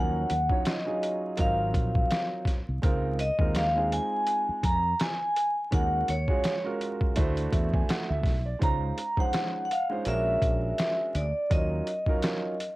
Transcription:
Already playing: fretless electric bass D#2, grand piano F3 F#3 C#4 D#4 A#4, vibraphone F#5
0.30 fretless electric bass D#2, closed hi-hat
0.49 grand piano F#3 C#4 D#4 F4 C#5, kick
0.65 vibraphone D#5, snare, closed hi-hat
0.85 grand piano F#3 C#4 D#4 F4 G#4
1.03 closed hi-hat
1.37 fretless electric bass G#1, grand piano F#3 C4 D#4 F4 A#4, vibraphone F5, kick, closed hi-hat
1.74 fretless electric bass A#1, kick, closed hi-hat
1.95 kick
2.11 snare, closed hi-hat
2.45 kick, snare, closed hi-hat
2.69 fretless electric bass C2
2.82 fretless electric bass C#2, grand piano G#3 C4 D#4 F4 A#4, kick, closed hi-hat
3.19 vibraphone D#5, closed hi-hat
3.39 fretless electric bass D#2, grand piano G#3 C4 D#4 F4 A#4, kick
3.55 vibraphone F5, snare, closed hi-hat
3.75 grand piano G#3 C4 D#4 F4 G#4
3.92 vibraphone G#5, closed hi-hat
4.27 closed hi-hat
4.49 muted fretless electric bass stroke
4.63 fretless electric bass F2, vibraphone A#5, kick, closed hi-hat
5.00 vibraphone G#5, snare, closed hi-hat
5.36 closed hi-hat
5.71 fretless electric bass D#2, grand piano G#3 C#4 D#4 F#4 A#4, vibraphone F#5, kick, closed hi-hat
6.08 fretless electric bass D#2, vibraphone C#5, closed hi-hat
6.28 grand piano G#3 C#4 F4 F#4 G#4, kick
6.44 snare, closed hi-hat
6.64 grand piano G#3 C#4 F4 F#4 A#4
6.81 closed hi-hat
7.01 kick
7.16 fretless electric bass D2, grand piano A3 D4 E4 F#4 C5, kick, closed hi-hat
7.37 closed hi-hat
7.52 fretless electric bass E2, grand piano E5, kick, closed hi-hat
7.74 grand piano G#5, kick
7.89 grand piano F#5, snare, closed hi-hat
8.09 fretless electric bass D2, grand piano E5
8.23 fretless electric bass B1, kick, snare, open hi-hat
8.46 grand piano D5
8.59 fretless electric bass C#2, grand piano G#3 C#4 D#4 F4 C5, vibraphone A#5, kick, closed hi-hat
8.98 closed hi-hat
9.17 grand piano F3 G#3 C#4 D#4 C5, vibraphone F#5, kick
9.33 snare, closed hi-hat
9.65 vibraphone F#5
9.71 vibraphone F5, closed hi-hat
9.90 grand piano G#3 C#4 D#4 F4 C5
10.05 fretless electric bass A#1, grand piano G#3 C#4 D4 F#4 A#4, vibraphone E5, closed hi-hat
10.42 fretless electric bass A#1, kick, closed hi-hat
10.78 snare, closed hi-hat
11.15 fretless electric bass D2, vibraphone D5, closed hi-hat
11.50 fretless electric bass D#2, grand piano F#3 C#4 D#4 F4 A#4, vibraphone D#5, kick, closed hi-hat
11.87 closed hi-hat
12.06 grand piano F#3 C#4 D#4 F4 A#4, kick
12.22 snare, closed hi-hat
12.60 closed hi-hat

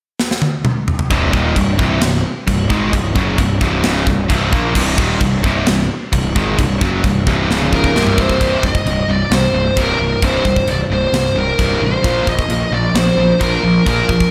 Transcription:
0.20 snare
0.31 snare
0.42 high tom
0.65 mid tom
0.88 floor tom
0.99 floor tom
1.10 picked electric bass C1, distorted electric guitar C2 G2 C3, kick, china
1.32 picked electric bass D#1, distorted electric guitar D#2 A#2 D#3, kick
1.56 picked electric bass C1, distorted electric guitar C2 G2, kick, china
1.78 picked electric bass C1, distorted electric guitar C2 G2 C3, kick
2.01 picked electric bass C1, distorted electric guitar C2 G2, snare, china
2.47 picked electric bass C1, distorted electric guitar C2 G2, kick, china
2.69 picked electric bass G#1, distorted electric guitar G#2 D#3 G#3, kick
2.92 picked electric bass C1, distorted electric guitar C2 G2, kick, china
3.15 picked electric bass F#1, distorted electric guitar F#2 C#3 F#3, kick
3.37 picked electric bass C1, distorted electric guitar C2 G2, kick, china
3.60 picked electric bass C1, distorted electric guitar C2 G2 C3, kick
3.82 picked electric bass C#1, distorted electric guitar C#2 G#2 C#3, snare, china
4.06 picked electric bass C1, distorted electric guitar C2 G2, kick
4.28 picked electric bass C1, distorted electric guitar C2 G2 C3, kick, china
4.51 picked electric bass A#1, distorted electric guitar A#2 F3 A#3, kick
4.74 picked electric bass C1, distorted electric guitar C2 G2 C3, kick, crash, china
4.97 picked electric bass D#1, distorted electric guitar D#2 A#2 D#3, kick
5.20 picked electric bass C1, distorted electric guitar C2 G2, kick, china
5.44 picked electric bass C1, distorted electric guitar C2 G2 C3, kick
5.66 picked electric bass C1, distorted electric guitar C2 G2, snare, china
6.12 picked electric bass C1, distorted electric guitar C2 G2, kick, china
6.36 picked electric bass G#1, distorted electric guitar G#2 D#3 G#3, kick
6.59 picked electric bass C1, distorted electric guitar C2 G2, kick, china
6.81 picked electric bass F#1, distorted electric guitar F#2 C#3 F#3, kick
7.04 picked electric bass C1, distorted electric guitar C2 G2, kick, china
7.27 picked electric bass C1, distorted electric guitar C2 G2 C3, kick
7.49 picked electric bass C#1, distorted electric guitar C#2 G#2 C#3, snare
7.62 high tom
7.73 lead electric guitar A#4, kick
7.84 kick
7.94 picked electric bass C1, distorted electric guitar C2 G2 C3, snare
8.07 mid tom
8.18 lead electric guitar C5, kick
8.29 kick
8.40 picked electric bass C1, distorted electric guitar C2 G2 C3, kick, china
8.62 picked electric bass C1, distorted electric guitar C2 G2, kick
8.66 lead electric guitar D#5
8.75 kick
8.85 picked electric bass C1, distorted electric guitar C2 G2, china
9.08 picked electric bass C1, distorted electric guitar C2 G2, lead electric guitar D5
9.31 picked electric bass C2, distorted electric guitar C2 G2, lead electric guitar C5, snare, china
9.53 picked electric bass C1, distorted electric guitar C2 G2
9.76 picked electric bass C1, distorted electric guitar C2 G2 C3, kick, china
9.81 lead electric guitar A#4
9.99 picked electric bass C1, distorted electric guitar C2 G2
10.22 picked electric bass C1, distorted electric guitar C2 G2 C3, lead electric guitar C5, kick, china
10.45 picked electric bass C1, distorted electric guitar C2 G2, kick
10.56 kick
10.67 picked electric bass C1, distorted electric guitar C2 G2, lead electric guitar D5, china
10.90 picked electric bass C1, distorted electric guitar C2 G2, lead electric guitar C5
11.12 distorted electric guitar C2 G2, picked electric bass C2, snare, china
11.35 picked electric bass C1, distorted electric guitar C2 G2, lead electric guitar A#4
11.59 picked electric bass C1, distorted electric guitar C2 G2 C3, kick, china
11.81 picked electric bass A1, distorted electric guitar C2 G2, lead electric guitar C5
12.04 picked electric bass A#1, distorted electric guitar A#2 F3 A#3, kick, china
12.27 picked electric bass A#1, distorted electric guitar A#2 F3, lead electric guitar D#5, kick
12.39 kick
12.49 picked electric bass A#1, distorted electric guitar A#2 F3, china
12.71 picked electric bass A#1, distorted electric guitar A#2 F3, lead electric guitar D5
12.94 picked electric bass A#1, distorted electric guitar A#2 F3, lead electric guitar C5, snare, china
13.17 picked electric bass A#1, distorted electric guitar A#2 F3
13.40 picked electric bass A#1, distorted electric guitar A#2 F3 A#3, lead electric guitar A#4, kick, china
13.63 picked electric bass A#1, distorted electric guitar A#2 F3
13.86 picked electric bass A#1, distorted electric guitar A#2 F3 A#3, lead electric guitar A#4, kick, china
14.09 picked electric bass A#1, distorted electric guitar A#2 F3, kick
14.20 kick

